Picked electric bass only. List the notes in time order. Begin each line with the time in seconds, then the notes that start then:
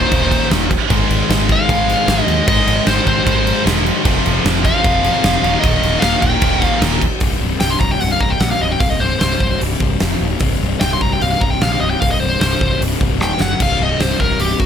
0.12 D#1
0.51 D#1
0.90 G#1
1.10 G#1
1.29 G#1
1.69 G#1
2.08 G#1
2.28 D#2
2.48 G#1
2.67 G#1
2.87 G#1
3.07 G#1
3.27 G#1
3.66 E1
4.05 F1
4.26 F1
4.45 F1
4.85 F1
5.24 F1
5.43 D#1
5.64 D#1
5.83 D#1
6.03 D#1
6.23 D#1
6.42 D#1
6.81 D#1
7.21 C1
7.41 C1
7.61 C1
7.80 C1
8.02 C1
8.21 C1
8.40 A#1
8.60 C1
8.80 C1
9.00 C1
9.21 C1
9.40 C1
9.61 C1
9.81 C1
10.01 F1
10.21 D#1
10.41 C1
10.61 C1
10.81 C1
11.01 C1
11.21 C1
11.41 C1
11.62 A#1
11.81 C1
12.02 C1
12.21 C1
12.41 C1
12.61 C1
12.81 C1
13.01 C1
13.20 D#1
13.40 F#1
13.60 C1
13.80 C1
13.99 C1
14.20 C1
14.39 C1
14.60 C1